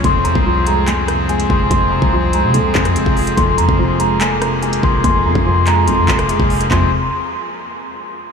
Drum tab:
HH |x-x---x-x-x-xx--|x-----x-x--xx-ox|x-x---x-x-x-xx--|x-----x-x--xx-ox|
CP |--------x-------|----------x-----|--------x-------|------x---x-----|
SD |----------r-----|-----------r----|----------r-----|-----------r----|
FT |----------------|----------------|----------------|----------------|
BD |o--o----------o-|o--o------o--o--|o--o----------o-|o--o------o--o--|

HH |----------------|
CP |x---------------|
SD |----------------|
FT |o---------------|
BD |o---------------|